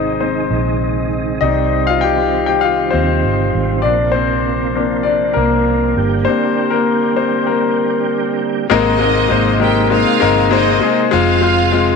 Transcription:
Already playing: fingered electric bass G#1, tonewheel organ C3 D#3 G#3 D#4, grand piano G#3 C4 D#4 C5 D#5
0.20 grand piano C4 C5
0.50 fingered electric bass A#1
1.41 fingered electric bass C2, grand piano D#3 C4 D#4 D5 D#5, tonewheel organ G3 C4
1.87 grand piano F4 F5
2.01 grand piano G4 G5
2.46 grand piano G4 G5
2.61 grand piano F4 F5
2.91 fingered electric bass D#2, grand piano C4 C5
3.24 fingered electric bass G1
3.55 fingered electric bass G#1
3.82 fingered electric bass A#1, tonewheel organ C3 F3 A#3, grand piano D4 D5
4.12 grand piano C4 C5
4.75 grand piano A#3 C4 D4
5.03 grand piano D4 D5
5.33 fingered electric bass C2, grand piano A#3 A#4
5.97 fingered electric bass G1, tonewheel organ D3 G3 G4
6.25 grand piano G3 A#3 C4 D4 C5
6.70 grand piano A#3 A#4
7.16 grand piano C4 C5
7.47 grand piano A#3 A#4
8.69 fingered electric bass G#1, grand piano G#2 G#3 A#3 C4 D#4 A#4, tonewheel organ C3 G#3 A#3 D#4, violin section D#4 D#5
8.99 grand piano G#3 A#3 C4 D#4 A#4
9.29 fingered electric bass G#1, grand piano G#3 A#3 C4 D#4 C5
9.60 grand piano G#3 A#3 C4 D#4 A#4, violin section G4 G5
9.90 grand piano G#3 A#3 C4 D#4 C5, violin section F4 F5
10.20 fingered electric bass G1, grand piano G#3 A#3 C4 D#4 A#4
10.51 grand piano G#3 A#3 C4 D#4 C5, violin section D#4 D#5
10.81 grand piano G#3 A#3 C4 D#4 G#4
11.11 fingered electric bass F1, tonewheel organ C3 F3 F4, grand piano G#3 C4 F4, violin section F4 F5
11.41 grand piano G#3 C4 F4
11.72 grand piano G#3 C4 F4

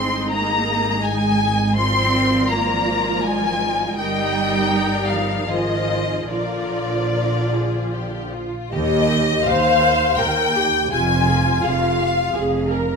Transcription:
Already playing: double bass section G#1, viola section G#3 D#4, cello section C4, violin section G#4 D#5 C6
0.31 cello section A#3, violin section A#5
1.05 cello section G#3, violin section G#5
1.77 viola section F3 F4, cello section C4, violin section A#4 D5 C6
2.51 cello section A#3, violin section A#5
3.24 cello section G#3, violin section G#5
3.98 double bass section G1, cello section G3, viola section G3 D#4, violin section A#4 D#5 G5
4.74 violin section D5
5.10 cello section F3, violin section F5
5.49 double bass section G#1, cello section D#3, viola section F3 F4, violin section G#4 C5 D#5
6.29 double bass section A#1, cello section D3, viola section F3 F4, violin section F4 A#4 D5
7.13 violin section A#4
7.52 violin section G#4
7.93 violin section G4
8.33 violin section F4
8.72 cello section D#2, double bass section D#2, violin section G4 D#5, viola section G4
9.10 violin section G4
9.45 cello section D#2, double bass section D#2, violin section G4 F5, viola section C5
9.81 violin section G4
10.17 cello section D#2, double bass section D#2, violin section G4 G5, viola section A#4
10.54 violin section G4, viola section G4
10.91 double bass section F1, cello section F2, viola section F4, violin section G#4 G#5
11.27 violin section G#4
11.63 double bass section F1, cello section F2, violin section G#4 F5
11.99 violin section G#4
12.34 double bass section F1, cello section F2, violin section G#4, viola section G#4
12.71 violin section G#4, viola section A#4

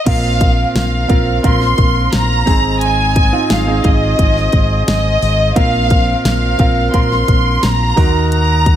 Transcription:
0.06 fingered electric bass A#1, grand piano A#2 C4 F4 A#4, flute section A#4 C5 F5 C6 F6, violin section F5, kick, closed hi-hat, crash
0.41 kick, closed hi-hat
0.75 fingered electric bass A#1, violin section F5, snare, closed hi-hat
1.08 fingered electric bass A#1, grand piano C4 F4 A#4, kick, closed hi-hat
1.43 fingered electric bass A#1, grand piano C4 F4 A#4, violin section C6, kick, closed hi-hat
1.61 snare
1.78 fingered electric bass A#1, kick, closed hi-hat
2.13 fingered electric bass A#1, violin section A#5, snare, closed hi-hat
2.46 fingered electric bass G#1, grand piano G#2 C4 D#4 G#4, flute section G#4 D#5 D#6, kick, open hi-hat
2.81 violin section G#5, closed hi-hat
3.16 kick, closed hi-hat
3.32 grand piano C4 D#4 F4
3.50 fingered electric bass G#1, violin section F5, snare, closed hi-hat
3.66 grand piano C4 D#4 G#4
3.84 fingered electric bass G#1, violin section D#5, kick, closed hi-hat
4.19 fingered electric bass G#1, kick, closed hi-hat
4.37 snare
4.53 fingered electric bass G#1, kick, closed hi-hat
4.88 fingered electric bass G#1, violin section D#5, snare, closed hi-hat
5.22 fingered electric bass G#1, open hi-hat
5.55 fingered electric bass A#1, grand piano A#2 C4 F4 A#4, flute section A#4 F5 F6, violin section F5, kick, closed hi-hat
5.90 kick, closed hi-hat
6.25 fingered electric bass A#1, violin section F5, snare, closed hi-hat
6.58 fingered electric bass A#1, grand piano C4 F4 A#4, kick, closed hi-hat
6.93 fingered electric bass A#1, grand piano C4 F4 A#4, violin section C6, kick, closed hi-hat
7.12 snare
7.28 fingered electric bass A#1, kick, closed hi-hat
7.63 fingered electric bass A#1, violin section A#5, snare, closed hi-hat
7.96 fingered electric bass D#2, grand piano D#3 D#4 F#4 A#4, flute section A#4 D#5 F#5 D#6 F#6, kick, open hi-hat
8.32 violin section A#5, closed hi-hat
8.66 kick, closed hi-hat

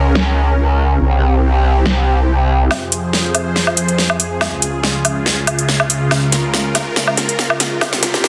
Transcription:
Already playing: wobble bass C#2, supersaw synth C#3 C#4 A#4 F5
0.15 snare
1.00 wobble bass C2, supersaw synth C3 C4 G4
1.86 snare
2.71 supersaw synth F2 F3 G#4 C5, snare, low woodblock
2.92 closed hi-hat
3.13 snare
3.35 closed hi-hat, low woodblock
3.56 snare
3.67 low woodblock
3.77 closed hi-hat
3.88 closed hi-hat
3.98 snare
4.10 low woodblock
4.20 closed hi-hat
4.41 supersaw synth C#2 C#3 F4, snare, low woodblock
4.62 closed hi-hat
4.84 snare
5.05 closed hi-hat, low woodblock
5.26 snare
5.47 closed hi-hat, low woodblock
5.59 closed hi-hat
5.69 snare
5.80 low woodblock
5.90 closed hi-hat
6.11 supersaw synth A#4, snare, low woodblock
6.32 snare, closed hi-hat
6.54 snare
6.75 snare, closed hi-hat, low woodblock
6.96 snare
7.08 low woodblock
7.17 snare, closed hi-hat
7.29 closed hi-hat
7.39 snare
7.50 low woodblock
7.60 snare, closed hi-hat
7.81 supersaw synth C2 C3 G4, snare, low woodblock
7.93 snare
8.03 snare, closed hi-hat
8.14 snare
8.24 snare

